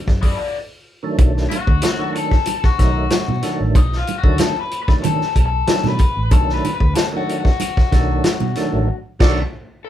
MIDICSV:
0, 0, Header, 1, 7, 480
1, 0, Start_track
1, 0, Tempo, 641711
1, 888, Time_signature, 4, 2, 24, 8
1, 7401, End_track
2, 0, Start_track
2, 0, Title_t, "Horn section"
2, 0, Program_c, 0, 61
2, 6887, Note_on_c, 0, 66, 112
2, 6887, Note_on_c, 0, 69, 119
2, 6891, Note_on_c, 0, 74, 118
2, 7011, Note_off_c, 0, 66, 0
2, 7011, Note_off_c, 0, 69, 0
2, 7014, Note_off_c, 0, 74, 0
2, 7401, End_track
3, 0, Start_track
3, 0, Title_t, "Overdriven electric guitar"
3, 0, Program_c, 1, 29
3, 161, Note_on_c, 1, 59, 59
3, 166, Note_on_c, 1, 63, 73
3, 169, Note_on_c, 1, 69, 70
3, 173, Note_on_c, 1, 74, 79
3, 276, Note_off_c, 1, 74, 0
3, 280, Note_off_c, 1, 69, 0
3, 283, Note_off_c, 1, 63, 0
3, 285, Note_on_c, 1, 74, 58
3, 288, Note_off_c, 1, 59, 0
3, 289, Note_on_c, 1, 69, 53
3, 292, Note_on_c, 1, 63, 49
3, 296, Note_on_c, 1, 59, 52
3, 399, Note_off_c, 1, 74, 0
3, 401, Note_off_c, 1, 69, 0
3, 403, Note_off_c, 1, 63, 0
3, 405, Note_off_c, 1, 59, 0
3, 1123, Note_on_c, 1, 66, 95
3, 1608, Note_off_c, 1, 66, 0
3, 1611, Note_on_c, 1, 69, 94
3, 1980, Note_off_c, 1, 69, 0
3, 1983, Note_on_c, 1, 66, 102
3, 2669, Note_off_c, 1, 66, 0
3, 2817, Note_on_c, 1, 63, 87
3, 2961, Note_off_c, 1, 63, 0
3, 2967, Note_on_c, 1, 65, 87
3, 3127, Note_off_c, 1, 65, 0
3, 3130, Note_on_c, 1, 66, 92
3, 3293, Note_on_c, 1, 69, 114
3, 3294, Note_off_c, 1, 66, 0
3, 3443, Note_off_c, 1, 69, 0
3, 3446, Note_on_c, 1, 71, 99
3, 3595, Note_off_c, 1, 71, 0
3, 3610, Note_on_c, 1, 71, 100
3, 3653, Note_off_c, 1, 71, 0
3, 3765, Note_on_c, 1, 69, 106
3, 4073, Note_off_c, 1, 69, 0
3, 4082, Note_on_c, 1, 69, 100
3, 4397, Note_off_c, 1, 69, 0
3, 4400, Note_on_c, 1, 71, 99
3, 4723, Note_off_c, 1, 71, 0
3, 4726, Note_on_c, 1, 69, 96
3, 4875, Note_off_c, 1, 69, 0
3, 4888, Note_on_c, 1, 71, 93
3, 5037, Note_off_c, 1, 71, 0
3, 5046, Note_on_c, 1, 71, 104
3, 5198, Note_off_c, 1, 71, 0
3, 5201, Note_on_c, 1, 69, 111
3, 5245, Note_off_c, 1, 69, 0
3, 5360, Note_on_c, 1, 66, 90
3, 5510, Note_off_c, 1, 66, 0
3, 5519, Note_on_c, 1, 66, 80
3, 6693, Note_off_c, 1, 66, 0
3, 7364, Note_on_c, 1, 69, 91
3, 7401, Note_off_c, 1, 69, 0
3, 7401, End_track
4, 0, Start_track
4, 0, Title_t, "Tonewheel organ"
4, 0, Program_c, 2, 16
4, 769, Note_on_c, 2, 51, 72
4, 773, Note_on_c, 2, 54, 73
4, 776, Note_on_c, 2, 57, 65
4, 781, Note_on_c, 2, 62, 90
4, 868, Note_off_c, 2, 51, 0
4, 872, Note_off_c, 2, 54, 0
4, 877, Note_off_c, 2, 57, 0
4, 877, Note_on_c, 2, 51, 88
4, 879, Note_off_c, 2, 62, 0
4, 881, Note_on_c, 2, 54, 87
4, 886, Note_on_c, 2, 57, 77
4, 888, Note_on_c, 2, 62, 89
4, 1177, Note_off_c, 2, 51, 0
4, 1179, Note_off_c, 2, 54, 0
4, 1182, Note_off_c, 2, 57, 0
4, 1183, Note_off_c, 2, 62, 0
4, 1486, Note_on_c, 2, 51, 71
4, 1489, Note_on_c, 2, 54, 71
4, 1491, Note_on_c, 2, 57, 64
4, 1497, Note_on_c, 2, 62, 76
4, 1779, Note_off_c, 2, 51, 0
4, 1780, Note_off_c, 2, 54, 0
4, 1781, Note_off_c, 2, 57, 0
4, 1785, Note_off_c, 2, 62, 0
4, 2081, Note_on_c, 2, 51, 78
4, 2083, Note_on_c, 2, 54, 82
4, 2087, Note_on_c, 2, 57, 79
4, 2089, Note_on_c, 2, 63, 80
4, 2318, Note_off_c, 2, 51, 0
4, 2319, Note_off_c, 2, 54, 0
4, 2321, Note_off_c, 2, 57, 0
4, 2322, Note_off_c, 2, 63, 0
4, 2556, Note_on_c, 2, 51, 90
4, 2561, Note_on_c, 2, 54, 78
4, 2564, Note_on_c, 2, 57, 81
4, 2568, Note_on_c, 2, 62, 87
4, 2856, Note_off_c, 2, 51, 0
4, 2859, Note_off_c, 2, 54, 0
4, 2860, Note_off_c, 2, 57, 0
4, 2862, Note_off_c, 2, 62, 0
4, 3166, Note_on_c, 2, 51, 82
4, 3170, Note_on_c, 2, 54, 77
4, 3173, Note_on_c, 2, 57, 68
4, 3179, Note_on_c, 2, 62, 90
4, 3403, Note_off_c, 2, 51, 0
4, 3405, Note_off_c, 2, 54, 0
4, 3407, Note_off_c, 2, 57, 0
4, 3409, Note_off_c, 2, 62, 0
4, 3646, Note_on_c, 2, 51, 68
4, 3651, Note_on_c, 2, 54, 62
4, 3654, Note_on_c, 2, 57, 65
4, 3659, Note_on_c, 2, 62, 71
4, 3939, Note_off_c, 2, 51, 0
4, 3941, Note_off_c, 2, 54, 0
4, 3942, Note_off_c, 2, 57, 0
4, 3945, Note_off_c, 2, 62, 0
4, 4240, Note_on_c, 2, 51, 74
4, 4242, Note_on_c, 2, 54, 72
4, 4245, Note_on_c, 2, 57, 72
4, 4247, Note_on_c, 2, 62, 78
4, 4477, Note_off_c, 2, 51, 0
4, 4478, Note_off_c, 2, 54, 0
4, 4480, Note_off_c, 2, 57, 0
4, 4481, Note_off_c, 2, 62, 0
4, 4721, Note_on_c, 2, 51, 82
4, 4726, Note_on_c, 2, 54, 72
4, 4728, Note_on_c, 2, 57, 77
4, 4733, Note_on_c, 2, 62, 93
4, 5018, Note_off_c, 2, 51, 0
4, 5021, Note_off_c, 2, 54, 0
4, 5022, Note_off_c, 2, 57, 0
4, 5025, Note_off_c, 2, 62, 0
4, 5326, Note_on_c, 2, 51, 73
4, 5327, Note_on_c, 2, 54, 73
4, 5331, Note_on_c, 2, 57, 66
4, 5335, Note_on_c, 2, 62, 85
4, 5618, Note_off_c, 2, 51, 0
4, 5618, Note_off_c, 2, 54, 0
4, 5620, Note_off_c, 2, 57, 0
4, 5623, Note_off_c, 2, 62, 0
4, 5919, Note_on_c, 2, 51, 82
4, 5923, Note_on_c, 2, 54, 69
4, 5929, Note_on_c, 2, 57, 72
4, 5932, Note_on_c, 2, 62, 95
4, 6156, Note_off_c, 2, 51, 0
4, 6158, Note_off_c, 2, 54, 0
4, 6161, Note_off_c, 2, 57, 0
4, 6163, Note_off_c, 2, 62, 0
4, 6403, Note_on_c, 2, 51, 92
4, 6405, Note_on_c, 2, 54, 85
4, 6410, Note_on_c, 2, 57, 81
4, 6413, Note_on_c, 2, 62, 102
4, 6645, Note_off_c, 2, 51, 0
4, 6646, Note_off_c, 2, 54, 0
4, 6648, Note_off_c, 2, 57, 0
4, 6650, Note_off_c, 2, 62, 0
4, 6878, Note_on_c, 2, 51, 117
4, 6882, Note_on_c, 2, 54, 126
4, 6884, Note_on_c, 2, 57, 109
4, 6887, Note_on_c, 2, 62, 109
4, 7047, Note_off_c, 2, 51, 0
4, 7050, Note_off_c, 2, 54, 0
4, 7051, Note_off_c, 2, 57, 0
4, 7053, Note_off_c, 2, 62, 0
4, 7401, End_track
5, 0, Start_track
5, 0, Title_t, "Fingered electric bass"
5, 0, Program_c, 3, 33
5, 53, Note_on_c, 3, 42, 82
5, 252, Note_off_c, 3, 42, 0
5, 886, Note_on_c, 3, 35, 113
5, 1085, Note_off_c, 3, 35, 0
5, 1249, Note_on_c, 3, 38, 95
5, 1345, Note_off_c, 3, 38, 0
5, 2092, Note_on_c, 3, 35, 86
5, 2288, Note_off_c, 3, 35, 0
5, 2456, Note_on_c, 3, 47, 95
5, 2548, Note_off_c, 3, 47, 0
5, 2696, Note_on_c, 3, 33, 97
5, 2804, Note_off_c, 3, 33, 0
5, 2804, Note_on_c, 3, 35, 105
5, 3004, Note_off_c, 3, 35, 0
5, 3169, Note_on_c, 3, 38, 93
5, 3264, Note_off_c, 3, 38, 0
5, 4006, Note_on_c, 3, 35, 89
5, 4205, Note_off_c, 3, 35, 0
5, 4368, Note_on_c, 3, 47, 91
5, 4463, Note_off_c, 3, 47, 0
5, 4614, Note_on_c, 3, 33, 100
5, 4726, Note_off_c, 3, 33, 0
5, 4726, Note_on_c, 3, 35, 114
5, 4925, Note_off_c, 3, 35, 0
5, 5086, Note_on_c, 3, 38, 101
5, 5183, Note_off_c, 3, 38, 0
5, 5926, Note_on_c, 3, 35, 97
5, 6124, Note_off_c, 3, 35, 0
5, 6290, Note_on_c, 3, 47, 95
5, 6385, Note_off_c, 3, 47, 0
5, 6530, Note_on_c, 3, 33, 103
5, 6645, Note_off_c, 3, 33, 0
5, 6884, Note_on_c, 3, 35, 105
5, 7051, Note_off_c, 3, 35, 0
5, 7401, End_track
6, 0, Start_track
6, 0, Title_t, "Muted overdriven electric guitar strokes"
6, 57, Note_on_c, 9, 29, 40
6, 131, Note_off_c, 9, 29, 0
6, 7401, End_track
7, 0, Start_track
7, 0, Title_t, "Drums"
7, 56, Note_on_c, 9, 38, 29
7, 57, Note_on_c, 9, 36, 85
7, 131, Note_off_c, 9, 38, 0
7, 132, Note_off_c, 9, 36, 0
7, 168, Note_on_c, 9, 46, 60
7, 170, Note_on_c, 9, 36, 81
7, 243, Note_off_c, 9, 46, 0
7, 245, Note_off_c, 9, 36, 0
7, 887, Note_on_c, 9, 36, 108
7, 887, Note_on_c, 9, 42, 84
7, 887, Note_on_c, 9, 62, 61
7, 962, Note_off_c, 9, 36, 0
7, 962, Note_off_c, 9, 42, 0
7, 962, Note_off_c, 9, 62, 0
7, 1023, Note_on_c, 9, 38, 38
7, 1098, Note_off_c, 9, 38, 0
7, 1133, Note_on_c, 9, 62, 64
7, 1135, Note_on_c, 9, 42, 75
7, 1208, Note_off_c, 9, 62, 0
7, 1210, Note_off_c, 9, 42, 0
7, 1252, Note_on_c, 9, 36, 96
7, 1327, Note_off_c, 9, 36, 0
7, 1358, Note_on_c, 9, 42, 109
7, 1368, Note_on_c, 9, 63, 89
7, 1369, Note_on_c, 9, 38, 117
7, 1433, Note_off_c, 9, 42, 0
7, 1443, Note_off_c, 9, 63, 0
7, 1444, Note_off_c, 9, 38, 0
7, 1611, Note_on_c, 9, 42, 74
7, 1686, Note_off_c, 9, 42, 0
7, 1731, Note_on_c, 9, 36, 86
7, 1731, Note_on_c, 9, 38, 32
7, 1806, Note_off_c, 9, 36, 0
7, 1806, Note_off_c, 9, 38, 0
7, 1837, Note_on_c, 9, 42, 99
7, 1851, Note_on_c, 9, 62, 62
7, 1911, Note_off_c, 9, 42, 0
7, 1926, Note_off_c, 9, 62, 0
7, 1971, Note_on_c, 9, 38, 29
7, 1974, Note_on_c, 9, 36, 91
7, 2046, Note_off_c, 9, 38, 0
7, 2049, Note_off_c, 9, 36, 0
7, 2086, Note_on_c, 9, 42, 65
7, 2089, Note_on_c, 9, 36, 81
7, 2090, Note_on_c, 9, 38, 35
7, 2094, Note_on_c, 9, 62, 38
7, 2161, Note_off_c, 9, 42, 0
7, 2163, Note_off_c, 9, 36, 0
7, 2165, Note_off_c, 9, 38, 0
7, 2168, Note_off_c, 9, 62, 0
7, 2321, Note_on_c, 9, 42, 86
7, 2323, Note_on_c, 9, 38, 117
7, 2331, Note_on_c, 9, 63, 75
7, 2396, Note_off_c, 9, 42, 0
7, 2398, Note_off_c, 9, 38, 0
7, 2406, Note_off_c, 9, 63, 0
7, 2456, Note_on_c, 9, 63, 74
7, 2530, Note_off_c, 9, 63, 0
7, 2562, Note_on_c, 9, 42, 76
7, 2567, Note_on_c, 9, 38, 35
7, 2637, Note_off_c, 9, 42, 0
7, 2642, Note_off_c, 9, 38, 0
7, 2806, Note_on_c, 9, 36, 110
7, 2807, Note_on_c, 9, 42, 80
7, 2809, Note_on_c, 9, 62, 62
7, 2881, Note_off_c, 9, 36, 0
7, 2882, Note_off_c, 9, 42, 0
7, 2884, Note_off_c, 9, 62, 0
7, 2935, Note_on_c, 9, 38, 40
7, 3010, Note_off_c, 9, 38, 0
7, 3046, Note_on_c, 9, 42, 72
7, 3057, Note_on_c, 9, 62, 59
7, 3121, Note_off_c, 9, 42, 0
7, 3132, Note_off_c, 9, 62, 0
7, 3168, Note_on_c, 9, 36, 97
7, 3243, Note_off_c, 9, 36, 0
7, 3276, Note_on_c, 9, 42, 114
7, 3287, Note_on_c, 9, 38, 123
7, 3295, Note_on_c, 9, 63, 86
7, 3351, Note_off_c, 9, 42, 0
7, 3361, Note_off_c, 9, 38, 0
7, 3370, Note_off_c, 9, 63, 0
7, 3526, Note_on_c, 9, 42, 76
7, 3601, Note_off_c, 9, 42, 0
7, 3651, Note_on_c, 9, 36, 96
7, 3653, Note_on_c, 9, 38, 34
7, 3726, Note_off_c, 9, 36, 0
7, 3727, Note_off_c, 9, 38, 0
7, 3766, Note_on_c, 9, 42, 103
7, 3777, Note_on_c, 9, 62, 66
7, 3777, Note_on_c, 9, 64, 89
7, 3841, Note_off_c, 9, 42, 0
7, 3851, Note_off_c, 9, 62, 0
7, 3851, Note_off_c, 9, 64, 0
7, 3898, Note_on_c, 9, 38, 31
7, 3973, Note_off_c, 9, 38, 0
7, 4006, Note_on_c, 9, 42, 75
7, 4007, Note_on_c, 9, 36, 74
7, 4080, Note_off_c, 9, 42, 0
7, 4082, Note_off_c, 9, 36, 0
7, 4243, Note_on_c, 9, 42, 96
7, 4245, Note_on_c, 9, 38, 127
7, 4250, Note_on_c, 9, 63, 74
7, 4318, Note_off_c, 9, 42, 0
7, 4320, Note_off_c, 9, 38, 0
7, 4325, Note_off_c, 9, 63, 0
7, 4367, Note_on_c, 9, 63, 84
7, 4370, Note_on_c, 9, 38, 37
7, 4442, Note_off_c, 9, 63, 0
7, 4445, Note_off_c, 9, 38, 0
7, 4478, Note_on_c, 9, 42, 80
7, 4486, Note_on_c, 9, 36, 100
7, 4553, Note_off_c, 9, 42, 0
7, 4560, Note_off_c, 9, 36, 0
7, 4721, Note_on_c, 9, 62, 61
7, 4723, Note_on_c, 9, 36, 105
7, 4723, Note_on_c, 9, 42, 84
7, 4796, Note_off_c, 9, 62, 0
7, 4797, Note_off_c, 9, 42, 0
7, 4798, Note_off_c, 9, 36, 0
7, 4855, Note_on_c, 9, 38, 40
7, 4930, Note_off_c, 9, 38, 0
7, 4970, Note_on_c, 9, 42, 80
7, 4974, Note_on_c, 9, 62, 65
7, 5045, Note_off_c, 9, 42, 0
7, 5048, Note_off_c, 9, 62, 0
7, 5089, Note_on_c, 9, 36, 92
7, 5164, Note_off_c, 9, 36, 0
7, 5200, Note_on_c, 9, 42, 101
7, 5206, Note_on_c, 9, 63, 84
7, 5211, Note_on_c, 9, 38, 115
7, 5275, Note_off_c, 9, 42, 0
7, 5281, Note_off_c, 9, 63, 0
7, 5286, Note_off_c, 9, 38, 0
7, 5454, Note_on_c, 9, 42, 76
7, 5529, Note_off_c, 9, 42, 0
7, 5571, Note_on_c, 9, 36, 85
7, 5574, Note_on_c, 9, 38, 33
7, 5646, Note_off_c, 9, 36, 0
7, 5649, Note_off_c, 9, 38, 0
7, 5683, Note_on_c, 9, 62, 67
7, 5687, Note_on_c, 9, 42, 110
7, 5758, Note_off_c, 9, 62, 0
7, 5761, Note_off_c, 9, 42, 0
7, 5814, Note_on_c, 9, 36, 94
7, 5818, Note_on_c, 9, 38, 33
7, 5889, Note_off_c, 9, 36, 0
7, 5892, Note_off_c, 9, 38, 0
7, 5927, Note_on_c, 9, 36, 79
7, 5927, Note_on_c, 9, 42, 74
7, 5928, Note_on_c, 9, 62, 36
7, 5930, Note_on_c, 9, 38, 35
7, 6001, Note_off_c, 9, 42, 0
7, 6002, Note_off_c, 9, 36, 0
7, 6002, Note_off_c, 9, 62, 0
7, 6005, Note_off_c, 9, 38, 0
7, 6162, Note_on_c, 9, 42, 96
7, 6164, Note_on_c, 9, 38, 122
7, 6166, Note_on_c, 9, 63, 77
7, 6237, Note_off_c, 9, 42, 0
7, 6239, Note_off_c, 9, 38, 0
7, 6241, Note_off_c, 9, 63, 0
7, 6286, Note_on_c, 9, 63, 88
7, 6361, Note_off_c, 9, 63, 0
7, 6399, Note_on_c, 9, 42, 72
7, 6404, Note_on_c, 9, 38, 32
7, 6473, Note_off_c, 9, 42, 0
7, 6479, Note_off_c, 9, 38, 0
7, 6883, Note_on_c, 9, 49, 81
7, 6884, Note_on_c, 9, 36, 117
7, 6885, Note_on_c, 9, 38, 115
7, 6958, Note_off_c, 9, 49, 0
7, 6959, Note_off_c, 9, 36, 0
7, 6960, Note_off_c, 9, 38, 0
7, 7401, End_track
0, 0, End_of_file